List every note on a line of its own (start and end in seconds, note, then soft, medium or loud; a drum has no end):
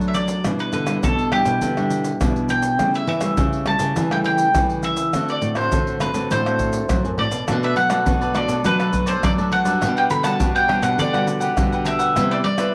0.00 0.42 F#3 medium
0.00 0.44 F#3 medium
0.00 0.40 A3 medium
0.00 0.40 D4 medium
0.00 0.40 F#4 medium
0.00 0.11 B4 medium
0.00 pandeiro soft
0.00 shaker soft
0.08 0.15 E5 medium
0.14 0.56 D5 medium
0.14 pandeiro medium
0.14 shaker medium
0.28 pandeiro medium
0.28 shaker medium
0.44 0.69 B2 medium
0.44 1.00 B2 medium
0.44 0.84 G3 medium
0.44 0.84 D4 medium
0.44 0.84 E4 medium
0.44 pandeiro medium
0.44 tamborim medium
0.44 shaker medium
0.44 surdo medium
0.59 0.72 B4 medium
0.59 pandeiro soft
0.59 shaker soft
0.73 0.98 D3 medium
0.73 1.04 B4 medium
0.73 pandeiro medium
0.73 shaker medium
0.87 1.27 G3 medium
0.87 1.27 D4 medium
0.87 1.27 E4 medium
0.87 pandeiro medium
0.87 tamborim medium
0.87 shaker medium
1.03 1.40 B2 loud
1.03 1.59 B2 medium
1.03 1.31 A4 medium
1.03 pandeiro medium
1.03 shaker medium
1.03 surdo loud
1.19 pandeiro soft
1.19 shaker soft
1.32 1.72 G3 medium
1.32 1.72 D4 medium
1.32 1.72 E4 medium
1.32 2.46 G4 medium
1.32 pandeiro medium
1.32 tamborim medium
1.45 1.59 B2 loud
1.45 pandeiro medium
1.45 shaker medium
1.62 2.18 B2 medium
1.62 2.12 D3 loud
1.62 pandeiro medium
1.62 shaker medium
1.62 surdo medium
1.77 2.16 G3 medium
1.77 2.17 D4 medium
1.77 2.17 E4 medium
1.77 pandeiro soft
1.77 tamborim medium
1.77 shaker soft
1.90 pandeiro medium
1.90 shaker medium
2.04 pandeiro medium
2.04 shaker medium
2.20 2.76 B2 medium
2.20 2.79 B2 medium
2.20 2.74 G3 medium
2.20 2.75 D4 medium
2.20 2.75 E4 medium
2.20 pandeiro medium
2.20 tamborim medium
2.20 shaker medium
2.20 surdo loud
2.36 pandeiro soft
2.36 shaker soft
2.49 2.95 G5 loud
2.49 pandeiro medium
2.49 shaker medium
2.62 pandeiro medium
2.62 shaker medium
2.79 3.04 C#3 medium
2.79 3.35 C#3 medium
2.79 3.07 G3 medium
2.79 3.07 A3 medium
2.79 3.07 E4 medium
2.79 pandeiro medium
2.79 tamborim medium
2.79 shaker medium
2.79 surdo medium
2.94 3.07 E5 medium
2.94 pandeiro soft
2.94 shaker soft
3.07 3.33 E3 medium
3.07 3.63 E5 medium
3.07 pandeiro medium
3.21 3.61 G3 medium
3.21 3.61 A3 medium
3.21 3.62 E4 medium
3.21 pandeiro medium
3.21 tamborim medium
3.21 shaker medium
3.37 3.93 C#3 medium
3.37 3.75 C#3 loud
3.37 pandeiro medium
3.37 shaker medium
3.37 surdo loud
3.53 pandeiro soft
3.53 shaker soft
3.66 4.06 G3 medium
3.66 4.06 A3 medium
3.66 4.06 E4 medium
3.66 4.08 A5 loud
3.66 pandeiro medium
3.66 tamborim medium
3.79 3.93 C#3 loud
3.79 pandeiro medium
3.79 shaker medium
3.96 4.52 C#3 medium
3.96 4.46 E3 loud
3.96 pandeiro medium
3.96 shaker medium
3.96 surdo medium
4.11 4.51 G3 medium
4.11 4.51 A3 medium
4.11 4.51 E4 medium
4.11 4.17 G5 loud
4.11 pandeiro soft
4.11 tamborim medium
4.11 shaker soft
4.24 4.80 G5 loud
4.24 pandeiro medium
4.38 pandeiro medium
4.38 shaker medium
4.55 5.11 C#3 medium
4.55 5.14 E3 medium
4.55 4.93 G3 medium
4.55 4.93 A3 medium
4.55 4.93 E4 medium
4.55 pandeiro medium
4.55 tamborim medium
4.55 shaker medium
4.55 surdo loud
4.70 pandeiro soft
4.70 shaker soft
4.83 5.29 E5 medium
4.83 pandeiro medium
4.83 shaker medium
4.97 pandeiro medium
4.97 shaker medium
5.13 5.69 D3 medium
5.13 5.38 D3 medium
5.13 5.53 A3 medium
5.13 5.53 C4 medium
5.13 5.53 F#4 medium
5.13 pandeiro medium
5.13 tamborim medium
5.13 shaker medium
5.13 surdo medium
5.28 5.56 D5 medium
5.28 pandeiro soft
5.28 shaker soft
5.41 5.67 A2 medium
5.41 pandeiro medium
5.41 shaker medium
5.55 5.96 A3 medium
5.55 5.96 C4 medium
5.55 5.96 F#4 medium
5.55 5.98 C5 medium
5.55 pandeiro medium
5.55 tamborim medium
5.55 shaker medium
5.72 6.28 A2 medium
5.72 6.09 D3 medium
5.72 pandeiro medium
5.72 shaker medium
5.72 surdo loud
5.87 pandeiro soft
5.87 shaker soft
6.00 6.10 A3 medium
6.00 6.10 C4 medium
6.00 6.10 F#4 medium
6.00 6.28 B4 medium
6.00 pandeiro medium
6.00 tamborim medium
6.00 shaker medium
6.14 6.27 D3 medium
6.14 6.40 A3 medium
6.14 6.40 C4 medium
6.14 6.40 F#4 medium
6.14 pandeiro medium
6.14 shaker medium
6.31 6.80 A2 loud
6.31 6.86 D3 medium
6.31 7.18 C5 medium
6.31 pandeiro medium
6.31 shaker medium
6.31 surdo medium
6.46 6.85 A3 medium
6.46 6.85 C4 medium
6.46 6.85 F#4 medium
6.46 pandeiro soft
6.46 tamborim medium
6.46 shaker soft
6.59 pandeiro medium
6.59 shaker medium
6.59 surdo medium
6.73 pandeiro medium
6.73 shaker medium
6.89 7.45 A2 medium
6.89 7.04 F#3 medium
6.89 7.27 A3 medium
6.89 7.27 C4 medium
6.89 7.27 F#4 medium
6.89 pandeiro medium
6.89 tamborim medium
6.89 shaker medium
6.89 surdo loud
7.05 7.17 F#2 medium
7.05 pandeiro soft
7.05 shaker soft
7.18 7.31 A2 medium
7.18 7.64 D5 loud
7.18 pandeiro medium
7.31 7.45 B2 medium
7.31 pandeiro medium
7.31 shaker medium
7.47 8.03 B2 medium
7.47 7.73 B2 medium
7.47 7.75 A3 medium
7.47 7.61 D4 soft
7.47 7.75 D4 medium
7.47 7.75 F#4 medium
7.47 7.61 A4 medium
7.47 7.62 B4 medium
7.47 7.61 D5 medium
7.47 pandeiro medium
7.47 tamborim medium
7.47 shaker medium
7.47 surdo medium
7.62 7.75 A4 soft
7.62 7.76 B4 medium
7.62 7.76 D5 medium
7.62 7.76 E5 medium
7.62 pandeiro soft
7.62 shaker soft
7.76 8.01 F#3 medium
7.76 8.37 F#5 loud
7.76 muted cavaquinho stroke soft
7.76 pandeiro medium
7.90 8.30 A3 medium
7.90 8.30 D4 medium
7.90 8.31 F#4 medium
7.90 8.05 A4 soft
7.90 8.04 B4 medium
7.90 8.04 D5 medium
7.90 pandeiro medium
7.90 tamborim medium
7.90 shaker medium
8.06 8.44 B2 loud
8.06 8.62 F#3 medium
8.06 8.19 D4 soft
8.06 8.20 A4 medium
8.06 8.20 B4 medium
8.06 8.20 D5 medium
8.06 pandeiro medium
8.06 shaker medium
8.06 surdo loud
8.21 8.34 A4 medium
8.21 8.35 B4 medium
8.21 8.34 D5 medium
8.21 pandeiro soft
8.21 shaker soft
8.34 8.59 A3 medium
8.34 8.63 D4 medium
8.34 8.60 D4 medium
8.34 8.60 F#4 medium
8.34 8.63 A4 medium
8.34 8.64 B4 medium
8.34 8.63 D5 medium
8.34 8.64 D5 medium
8.34 pandeiro medium
8.34 tamborim medium
8.34 shaker medium
8.48 8.61 B2 loud
8.48 pandeiro medium
8.48 shaker medium
8.64 9.20 B2 medium
8.64 9.15 F#3 loud
8.64 8.89 A3 medium
8.64 8.78 D4 medium
8.64 8.89 D4 medium
8.64 8.89 F#4 medium
8.64 8.78 A4 soft
8.64 9.06 B4 loud
8.64 8.79 B4 medium
8.64 8.78 D5 medium
8.64 pandeiro medium
8.64 shaker medium
8.64 surdo medium
8.79 8.92 A4 medium
8.79 8.93 B4 medium
8.79 8.93 D5 medium
8.79 pandeiro soft
8.79 tamborim medium
8.79 shaker soft
8.92 9.32 A3 medium
8.92 9.33 D4 medium
8.92 9.33 F#4 medium
8.92 muted cavaquinho stroke soft
8.92 pandeiro medium
8.92 shaker medium
8.92 surdo medium
9.06 9.37 A4 medium
9.06 9.36 B4 medium
9.06 9.22 C5 medium
9.06 9.35 D5 medium
9.06 pandeiro medium
9.06 shaker medium
9.23 9.82 F#3 medium
9.23 9.79 F#3 medium
9.23 9.32 D5 loud
9.23 pandeiro medium
9.23 tamborim medium
9.23 shaker medium
9.23 surdo loud
9.38 9.62 A3 medium
9.38 9.63 D4 medium
9.38 9.63 F#4 medium
9.38 9.51 A4 medium
9.38 9.52 B4 medium
9.38 9.52 D5 medium
9.38 pandeiro soft
9.38 shaker soft
9.51 9.65 D4 medium
9.51 9.66 A4 medium
9.51 9.65 B4 medium
9.51 9.64 D5 medium
9.51 9.93 F#5 loud
9.51 pandeiro medium
9.65 10.20 G3 medium
9.65 10.20 D4 medium
9.65 10.20 F#4 medium
9.65 9.81 A4 medium
9.65 9.80 B4 medium
9.65 9.80 D5 medium
9.65 pandeiro medium
9.65 shaker medium
9.81 10.07 B2 loud
9.81 10.37 B2 medium
9.81 9.95 D4 soft
9.81 9.95 G4 medium
9.81 9.96 B4 medium
9.81 9.95 F#5 medium
9.81 pandeiro medium
9.81 tamborim medium
9.81 shaker medium
9.81 surdo medium
9.96 10.09 G4 medium
9.96 10.10 B4 medium
9.96 10.10 F#5 medium
9.96 10.03 G5 medium
9.96 pandeiro soft
9.96 shaker soft
10.10 10.36 D3 medium
10.10 10.24 B5 loud
10.10 muted cavaquinho stroke soft
10.10 pandeiro medium
10.10 shaker medium
10.23 10.64 G3 medium
10.23 10.64 D4 medium
10.23 10.64 F#4 medium
10.23 10.39 G4 medium
10.23 10.39 B4 medium
10.23 10.38 F#5 medium
10.23 10.52 A5 medium
10.23 pandeiro medium
10.23 tamborim medium
10.23 shaker medium
10.40 10.77 B2 loud
10.40 10.96 B2 medium
10.40 10.53 D4 medium
10.40 10.54 G4 medium
10.40 10.54 B4 medium
10.40 10.54 F#5 medium
10.40 pandeiro medium
10.40 shaker medium
10.40 surdo loud
10.55 10.68 G4 medium
10.55 10.69 B4 medium
10.55 10.68 F#5 medium
10.55 10.83 G5 loud
10.55 pandeiro soft
10.55 shaker soft
10.68 11.08 G3 medium
10.68 10.97 D4 medium
10.68 11.08 D4 medium
10.68 11.08 F#4 medium
10.68 10.97 G4 medium
10.68 10.98 B4 medium
10.68 10.98 F#5 medium
10.68 pandeiro medium
10.68 tamborim medium
10.82 10.95 B2 loud
10.82 10.97 F#5 medium
10.82 pandeiro medium
10.82 shaker medium
10.98 11.54 B2 medium
10.98 11.48 D3 loud
10.98 11.12 D4 medium
10.98 11.13 G4 medium
10.98 11.13 B4 medium
10.98 11.83 D5 medium
10.98 11.12 F#5 medium
10.98 pandeiro medium
10.98 shaker medium
10.98 surdo medium
11.13 11.53 G3 medium
11.13 11.53 D4 medium
11.13 11.53 F#4 medium
11.13 11.26 G4 medium
11.13 11.27 B4 medium
11.13 11.27 F#5 medium
11.13 pandeiro soft
11.13 tamborim medium
11.13 shaker soft
11.27 muted cavaquinho stroke soft
11.27 pandeiro medium
11.27 shaker medium
11.40 11.71 G4 medium
11.40 11.70 B4 medium
11.40 11.70 F#5 medium
11.40 pandeiro medium
11.40 shaker medium
11.57 12.13 B2 medium
11.57 12.16 D3 medium
11.57 12.11 G3 medium
11.57 12.11 D4 medium
11.57 12.11 F#4 medium
11.57 pandeiro medium
11.57 tamborim medium
11.57 shaker medium
11.57 surdo loud
11.72 11.85 G4 medium
11.72 11.85 B4 medium
11.72 11.86 F#5 medium
11.72 pandeiro soft
11.72 shaker soft
11.85 11.99 D4 medium
11.85 12.00 G4 medium
11.85 11.99 B4 medium
11.85 12.31 E5 loud
11.85 11.98 F#5 medium
11.85 pandeiro medium
11.85 shaker medium
11.99 12.14 G4 medium
11.99 12.14 B4 medium
11.99 12.13 F#5 medium
11.99 pandeiro medium
11.99 shaker medium
12.15 12.71 C3 medium
12.15 12.41 C3 medium
12.15 12.43 G3 medium
12.15 12.44 B3 medium
12.15 12.44 E4 medium
12.15 12.29 G4 medium
12.15 12.30 B4 medium
12.15 12.30 C5 medium
12.15 12.30 E5 medium
12.15 pandeiro medium
12.15 tamborim medium
12.15 shaker medium
12.15 surdo medium
12.31 12.44 B4 medium
12.31 12.44 C5 soft
12.31 12.36 D5 medium
12.31 12.44 E5 medium
12.31 pandeiro soft
12.31 shaker soft
12.44 12.69 G3 loud
12.44 12.75 D5 loud
12.44 muted cavaquinho stroke soft
12.44 pandeiro medium
12.57 12.75 G3 medium
12.57 12.75 B3 medium
12.57 12.75 E4 medium
12.57 12.73 B4 medium
12.57 12.74 C5 medium
12.57 12.72 E5 medium
12.57 pandeiro medium
12.57 tamborim medium
12.57 shaker medium